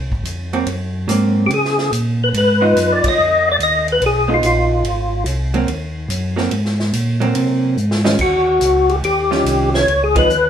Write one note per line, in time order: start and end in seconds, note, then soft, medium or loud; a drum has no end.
0.00 0.11 C2 medium
0.10 0.24 G#1 medium
0.10 kick medium
0.24 0.65 F2 medium
0.24 hi-hat pedal medium
0.24 ride medium
0.53 0.66 F#3 medium
0.53 0.66 A#3 medium
0.53 0.66 C4 medium
0.53 ride soft
0.66 1.07 F#2 medium
0.66 ride medium
1.07 1.49 G#2 medium
1.07 1.50 F#3 medium
1.07 1.51 A#3 medium
1.07 1.51 C4 medium
1.07 hi-hat pedal medium
1.07 ride medium
1.46 1.90 C#3 medium
1.46 1.51 G4 medium
1.50 1.91 G#4 medium
1.50 ride medium
1.65 snare soft
1.78 snare soft
1.92 2.33 A#2 medium
1.92 hi-hat pedal medium
1.92 ride medium
2.24 2.29 B4 medium
2.33 2.74 G#2 medium
2.33 ride medium
2.38 2.93 B4 medium
2.61 3.14 B3 medium
2.61 3.15 D#4 medium
2.61 3.15 F4 medium
2.76 3.02 F#2 loud
2.76 hi-hat pedal medium
2.76 ride medium
2.92 3.05 D5 medium
3.04 3.11 F#2 soft
3.04 kick medium
3.04 ride medium
3.08 3.49 D#5 loud
3.19 3.59 F2 medium
3.52 3.57 D5 medium
3.60 4.00 D#2 medium
3.60 3.87 D#5 medium
3.60 hi-hat pedal medium
3.60 ride medium
3.88 ride soft
3.92 4.04 B4 medium
4.01 4.41 B1 medium
4.01 ride medium
4.06 4.32 G#4 medium
4.28 4.82 B3 medium
4.28 4.82 D#4 soft
4.28 4.82 F4 medium
4.34 4.45 F4 medium
4.42 4.83 A#1 medium
4.42 5.24 F4 medium
4.42 hi-hat pedal medium
4.42 ride medium
4.83 5.25 G#1 medium
4.83 ride medium
5.25 5.66 C2 loud
5.25 hi-hat pedal medium
5.25 ride medium
5.54 5.67 F#3 medium
5.54 5.67 A#3 medium
5.54 5.67 C4 medium
5.54 ride soft
5.67 6.08 D#2 medium
5.67 ride medium
6.08 6.50 F#2 medium
6.08 hi-hat pedal medium
6.08 ride medium
6.36 6.50 F#3 medium
6.36 6.50 A#3 medium
6.36 6.51 C4 medium
6.36 snare soft
6.51 6.92 G#2 medium
6.51 ride medium
6.65 snare soft
6.80 snare soft
6.93 7.34 A#2 loud
6.93 hi-hat pedal medium
6.93 ride medium
7.20 7.74 F#3 medium
7.20 7.74 A#3 medium
7.20 7.75 C4 medium
7.20 ride soft
7.35 7.76 C3 medium
7.35 ride medium
7.77 8.18 G#2 medium
7.77 hi-hat pedal medium
7.91 snare medium
8.04 8.18 D#3 soft
8.04 8.18 G3 medium
8.04 8.18 C#4 medium
8.04 8.18 F4 medium
8.04 snare medium
8.18 8.60 D#2 medium
8.18 8.92 F#4 medium
8.18 kick medium
8.18 crash medium
8.61 9.02 C#2 medium
8.61 hi-hat pedal medium
8.61 ride medium
8.89 8.96 G4 medium
8.89 ride soft
9.03 9.44 D#2 medium
9.03 9.70 G4 medium
9.03 ride medium
9.31 9.84 D#3 medium
9.31 9.84 G3 medium
9.31 9.85 C#4 medium
9.31 9.85 F4 medium
9.31 snare soft
9.45 9.86 C2 medium
9.45 hi-hat pedal medium
9.45 ride medium
9.74 10.03 C#5 loud
9.74 snare medium
9.87 10.28 C#2 medium
9.87 ride soft
10.04 10.16 G#4 medium
10.15 10.28 F3 medium
10.15 10.28 B3 medium
10.15 10.28 D#4 medium
10.15 10.50 B4 medium
10.15 kick medium
10.15 ride medium
10.28 10.50 D#2 medium
10.28 hi-hat pedal soft